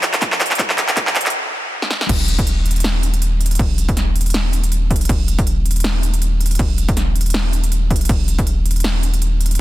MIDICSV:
0, 0, Header, 1, 3, 480
1, 0, Start_track
1, 0, Tempo, 375000
1, 759, Time_signature, 4, 2, 24, 8
1, 12297, End_track
2, 0, Start_track
2, 0, Title_t, "808-style bass"
2, 0, Program_c, 0, 38
2, 2680, Note_on_c, 0, 27, 85
2, 4578, Note_off_c, 0, 27, 0
2, 4600, Note_on_c, 0, 27, 86
2, 6499, Note_off_c, 0, 27, 0
2, 6520, Note_on_c, 0, 27, 92
2, 8418, Note_off_c, 0, 27, 0
2, 8440, Note_on_c, 0, 27, 89
2, 10338, Note_off_c, 0, 27, 0
2, 10360, Note_on_c, 0, 27, 91
2, 12258, Note_off_c, 0, 27, 0
2, 12297, End_track
3, 0, Start_track
3, 0, Title_t, "Drums"
3, 39, Note_on_c, 9, 39, 101
3, 39, Note_on_c, 9, 42, 70
3, 167, Note_off_c, 9, 39, 0
3, 167, Note_off_c, 9, 42, 0
3, 173, Note_on_c, 9, 39, 83
3, 173, Note_on_c, 9, 42, 67
3, 279, Note_off_c, 9, 39, 0
3, 279, Note_off_c, 9, 42, 0
3, 279, Note_on_c, 9, 36, 102
3, 279, Note_on_c, 9, 39, 93
3, 279, Note_on_c, 9, 42, 78
3, 407, Note_off_c, 9, 36, 0
3, 407, Note_off_c, 9, 39, 0
3, 407, Note_off_c, 9, 42, 0
3, 413, Note_on_c, 9, 39, 90
3, 519, Note_off_c, 9, 39, 0
3, 519, Note_on_c, 9, 39, 104
3, 519, Note_on_c, 9, 42, 49
3, 586, Note_off_c, 9, 42, 0
3, 586, Note_on_c, 9, 42, 67
3, 647, Note_off_c, 9, 39, 0
3, 653, Note_off_c, 9, 42, 0
3, 653, Note_on_c, 9, 39, 95
3, 653, Note_on_c, 9, 42, 54
3, 706, Note_off_c, 9, 42, 0
3, 706, Note_on_c, 9, 42, 69
3, 759, Note_off_c, 9, 39, 0
3, 759, Note_off_c, 9, 42, 0
3, 759, Note_on_c, 9, 36, 99
3, 759, Note_on_c, 9, 39, 104
3, 759, Note_on_c, 9, 42, 87
3, 887, Note_off_c, 9, 36, 0
3, 887, Note_off_c, 9, 39, 0
3, 887, Note_off_c, 9, 42, 0
3, 893, Note_on_c, 9, 39, 94
3, 999, Note_off_c, 9, 39, 0
3, 999, Note_on_c, 9, 39, 107
3, 999, Note_on_c, 9, 42, 72
3, 1127, Note_off_c, 9, 39, 0
3, 1127, Note_off_c, 9, 42, 0
3, 1133, Note_on_c, 9, 39, 87
3, 1133, Note_on_c, 9, 42, 68
3, 1238, Note_off_c, 9, 39, 0
3, 1238, Note_off_c, 9, 42, 0
3, 1238, Note_on_c, 9, 39, 105
3, 1238, Note_on_c, 9, 42, 81
3, 1239, Note_on_c, 9, 36, 99
3, 1366, Note_off_c, 9, 39, 0
3, 1366, Note_off_c, 9, 42, 0
3, 1367, Note_off_c, 9, 36, 0
3, 1372, Note_on_c, 9, 39, 94
3, 1479, Note_off_c, 9, 39, 0
3, 1479, Note_on_c, 9, 39, 109
3, 1479, Note_on_c, 9, 42, 57
3, 1545, Note_off_c, 9, 42, 0
3, 1545, Note_on_c, 9, 42, 73
3, 1607, Note_off_c, 9, 39, 0
3, 1613, Note_off_c, 9, 42, 0
3, 1613, Note_on_c, 9, 39, 96
3, 1613, Note_on_c, 9, 42, 53
3, 1666, Note_off_c, 9, 42, 0
3, 1666, Note_on_c, 9, 42, 68
3, 1741, Note_off_c, 9, 39, 0
3, 1794, Note_off_c, 9, 42, 0
3, 2334, Note_on_c, 9, 38, 51
3, 2439, Note_off_c, 9, 38, 0
3, 2439, Note_on_c, 9, 38, 81
3, 2567, Note_off_c, 9, 38, 0
3, 2573, Note_on_c, 9, 38, 86
3, 2680, Note_on_c, 9, 36, 127
3, 2680, Note_on_c, 9, 42, 86
3, 2680, Note_on_c, 9, 49, 102
3, 2680, Note_on_c, 9, 57, 50
3, 2701, Note_off_c, 9, 38, 0
3, 2808, Note_off_c, 9, 36, 0
3, 2808, Note_off_c, 9, 42, 0
3, 2808, Note_off_c, 9, 49, 0
3, 2808, Note_off_c, 9, 57, 0
3, 2920, Note_on_c, 9, 42, 72
3, 3048, Note_off_c, 9, 42, 0
3, 3054, Note_on_c, 9, 36, 104
3, 3054, Note_on_c, 9, 42, 70
3, 3160, Note_off_c, 9, 42, 0
3, 3160, Note_on_c, 9, 42, 85
3, 3182, Note_off_c, 9, 36, 0
3, 3288, Note_off_c, 9, 42, 0
3, 3400, Note_on_c, 9, 42, 55
3, 3467, Note_off_c, 9, 42, 0
3, 3467, Note_on_c, 9, 42, 72
3, 3534, Note_off_c, 9, 42, 0
3, 3534, Note_on_c, 9, 42, 52
3, 3587, Note_off_c, 9, 42, 0
3, 3587, Note_on_c, 9, 42, 67
3, 3639, Note_off_c, 9, 42, 0
3, 3639, Note_on_c, 9, 38, 122
3, 3639, Note_on_c, 9, 42, 84
3, 3639, Note_on_c, 9, 57, 40
3, 3767, Note_off_c, 9, 38, 0
3, 3767, Note_off_c, 9, 42, 0
3, 3767, Note_off_c, 9, 57, 0
3, 3879, Note_on_c, 9, 42, 72
3, 4007, Note_off_c, 9, 42, 0
3, 4014, Note_on_c, 9, 42, 68
3, 4120, Note_off_c, 9, 42, 0
3, 4120, Note_on_c, 9, 42, 82
3, 4248, Note_off_c, 9, 42, 0
3, 4359, Note_on_c, 9, 42, 51
3, 4426, Note_off_c, 9, 42, 0
3, 4426, Note_on_c, 9, 42, 70
3, 4494, Note_off_c, 9, 42, 0
3, 4494, Note_on_c, 9, 42, 55
3, 4547, Note_off_c, 9, 42, 0
3, 4547, Note_on_c, 9, 42, 71
3, 4600, Note_off_c, 9, 42, 0
3, 4600, Note_on_c, 9, 36, 124
3, 4600, Note_on_c, 9, 42, 82
3, 4600, Note_on_c, 9, 57, 47
3, 4728, Note_off_c, 9, 36, 0
3, 4728, Note_off_c, 9, 42, 0
3, 4728, Note_off_c, 9, 57, 0
3, 4839, Note_on_c, 9, 42, 70
3, 4967, Note_off_c, 9, 42, 0
3, 4974, Note_on_c, 9, 36, 110
3, 4974, Note_on_c, 9, 42, 66
3, 5080, Note_off_c, 9, 42, 0
3, 5080, Note_on_c, 9, 38, 37
3, 5080, Note_on_c, 9, 42, 83
3, 5102, Note_off_c, 9, 36, 0
3, 5208, Note_off_c, 9, 38, 0
3, 5208, Note_off_c, 9, 42, 0
3, 5320, Note_on_c, 9, 42, 53
3, 5386, Note_off_c, 9, 42, 0
3, 5386, Note_on_c, 9, 42, 66
3, 5454, Note_off_c, 9, 42, 0
3, 5454, Note_on_c, 9, 42, 52
3, 5506, Note_off_c, 9, 42, 0
3, 5506, Note_on_c, 9, 42, 64
3, 5559, Note_off_c, 9, 42, 0
3, 5559, Note_on_c, 9, 38, 127
3, 5559, Note_on_c, 9, 42, 84
3, 5559, Note_on_c, 9, 57, 40
3, 5687, Note_off_c, 9, 38, 0
3, 5687, Note_off_c, 9, 42, 0
3, 5687, Note_off_c, 9, 57, 0
3, 5799, Note_on_c, 9, 42, 73
3, 5927, Note_off_c, 9, 42, 0
3, 5933, Note_on_c, 9, 42, 67
3, 6039, Note_off_c, 9, 42, 0
3, 6039, Note_on_c, 9, 42, 76
3, 6167, Note_off_c, 9, 42, 0
3, 6279, Note_on_c, 9, 42, 50
3, 6280, Note_on_c, 9, 36, 68
3, 6346, Note_off_c, 9, 42, 0
3, 6346, Note_on_c, 9, 42, 66
3, 6408, Note_off_c, 9, 36, 0
3, 6414, Note_off_c, 9, 42, 0
3, 6414, Note_on_c, 9, 42, 53
3, 6466, Note_off_c, 9, 42, 0
3, 6466, Note_on_c, 9, 42, 72
3, 6519, Note_off_c, 9, 42, 0
3, 6519, Note_on_c, 9, 42, 81
3, 6519, Note_on_c, 9, 57, 46
3, 6520, Note_on_c, 9, 36, 123
3, 6647, Note_off_c, 9, 42, 0
3, 6647, Note_off_c, 9, 57, 0
3, 6648, Note_off_c, 9, 36, 0
3, 6759, Note_on_c, 9, 42, 66
3, 6887, Note_off_c, 9, 42, 0
3, 6893, Note_on_c, 9, 42, 62
3, 6894, Note_on_c, 9, 36, 114
3, 6999, Note_off_c, 9, 42, 0
3, 6999, Note_on_c, 9, 42, 79
3, 7022, Note_off_c, 9, 36, 0
3, 7127, Note_off_c, 9, 42, 0
3, 7239, Note_on_c, 9, 42, 50
3, 7306, Note_off_c, 9, 42, 0
3, 7306, Note_on_c, 9, 42, 67
3, 7373, Note_off_c, 9, 42, 0
3, 7373, Note_on_c, 9, 42, 49
3, 7426, Note_off_c, 9, 42, 0
3, 7426, Note_on_c, 9, 42, 66
3, 7479, Note_on_c, 9, 38, 127
3, 7479, Note_on_c, 9, 57, 40
3, 7554, Note_off_c, 9, 42, 0
3, 7607, Note_off_c, 9, 38, 0
3, 7607, Note_off_c, 9, 57, 0
3, 7719, Note_on_c, 9, 42, 67
3, 7847, Note_off_c, 9, 42, 0
3, 7854, Note_on_c, 9, 42, 63
3, 7959, Note_off_c, 9, 42, 0
3, 7959, Note_on_c, 9, 42, 77
3, 8087, Note_off_c, 9, 42, 0
3, 8199, Note_on_c, 9, 42, 49
3, 8266, Note_off_c, 9, 42, 0
3, 8266, Note_on_c, 9, 42, 65
3, 8333, Note_off_c, 9, 42, 0
3, 8333, Note_on_c, 9, 42, 51
3, 8386, Note_off_c, 9, 42, 0
3, 8386, Note_on_c, 9, 42, 67
3, 8439, Note_off_c, 9, 42, 0
3, 8439, Note_on_c, 9, 36, 127
3, 8439, Note_on_c, 9, 42, 76
3, 8439, Note_on_c, 9, 57, 47
3, 8567, Note_off_c, 9, 36, 0
3, 8567, Note_off_c, 9, 42, 0
3, 8567, Note_off_c, 9, 57, 0
3, 8679, Note_on_c, 9, 42, 65
3, 8807, Note_off_c, 9, 42, 0
3, 8813, Note_on_c, 9, 42, 65
3, 8814, Note_on_c, 9, 36, 109
3, 8919, Note_off_c, 9, 42, 0
3, 8919, Note_on_c, 9, 38, 39
3, 8919, Note_on_c, 9, 42, 76
3, 8942, Note_off_c, 9, 36, 0
3, 9047, Note_off_c, 9, 38, 0
3, 9047, Note_off_c, 9, 42, 0
3, 9159, Note_on_c, 9, 42, 49
3, 9226, Note_off_c, 9, 42, 0
3, 9226, Note_on_c, 9, 42, 67
3, 9293, Note_off_c, 9, 42, 0
3, 9293, Note_on_c, 9, 42, 47
3, 9346, Note_off_c, 9, 42, 0
3, 9346, Note_on_c, 9, 42, 62
3, 9399, Note_on_c, 9, 38, 127
3, 9399, Note_on_c, 9, 57, 41
3, 9474, Note_off_c, 9, 42, 0
3, 9527, Note_off_c, 9, 38, 0
3, 9527, Note_off_c, 9, 57, 0
3, 9639, Note_on_c, 9, 42, 64
3, 9767, Note_off_c, 9, 42, 0
3, 9773, Note_on_c, 9, 42, 62
3, 9879, Note_off_c, 9, 42, 0
3, 9879, Note_on_c, 9, 42, 75
3, 10007, Note_off_c, 9, 42, 0
3, 10119, Note_on_c, 9, 36, 67
3, 10119, Note_on_c, 9, 42, 50
3, 10186, Note_off_c, 9, 42, 0
3, 10186, Note_on_c, 9, 42, 64
3, 10247, Note_off_c, 9, 36, 0
3, 10253, Note_off_c, 9, 42, 0
3, 10253, Note_on_c, 9, 42, 52
3, 10306, Note_off_c, 9, 42, 0
3, 10306, Note_on_c, 9, 42, 64
3, 10359, Note_off_c, 9, 42, 0
3, 10359, Note_on_c, 9, 36, 124
3, 10359, Note_on_c, 9, 42, 75
3, 10359, Note_on_c, 9, 57, 50
3, 10487, Note_off_c, 9, 36, 0
3, 10487, Note_off_c, 9, 42, 0
3, 10487, Note_off_c, 9, 57, 0
3, 10599, Note_on_c, 9, 42, 64
3, 10727, Note_off_c, 9, 42, 0
3, 10733, Note_on_c, 9, 42, 64
3, 10734, Note_on_c, 9, 36, 106
3, 10839, Note_off_c, 9, 42, 0
3, 10839, Note_on_c, 9, 42, 77
3, 10862, Note_off_c, 9, 36, 0
3, 10967, Note_off_c, 9, 42, 0
3, 11079, Note_on_c, 9, 42, 51
3, 11146, Note_off_c, 9, 42, 0
3, 11146, Note_on_c, 9, 42, 66
3, 11213, Note_off_c, 9, 42, 0
3, 11213, Note_on_c, 9, 42, 46
3, 11266, Note_off_c, 9, 42, 0
3, 11266, Note_on_c, 9, 42, 63
3, 11320, Note_on_c, 9, 38, 119
3, 11320, Note_on_c, 9, 57, 43
3, 11394, Note_off_c, 9, 42, 0
3, 11448, Note_off_c, 9, 38, 0
3, 11448, Note_off_c, 9, 57, 0
3, 11559, Note_on_c, 9, 42, 64
3, 11687, Note_off_c, 9, 42, 0
3, 11693, Note_on_c, 9, 42, 60
3, 11799, Note_off_c, 9, 42, 0
3, 11799, Note_on_c, 9, 42, 74
3, 11927, Note_off_c, 9, 42, 0
3, 12039, Note_on_c, 9, 42, 48
3, 12106, Note_off_c, 9, 42, 0
3, 12106, Note_on_c, 9, 42, 66
3, 12174, Note_off_c, 9, 42, 0
3, 12174, Note_on_c, 9, 42, 49
3, 12226, Note_off_c, 9, 42, 0
3, 12226, Note_on_c, 9, 42, 68
3, 12297, Note_off_c, 9, 42, 0
3, 12297, End_track
0, 0, End_of_file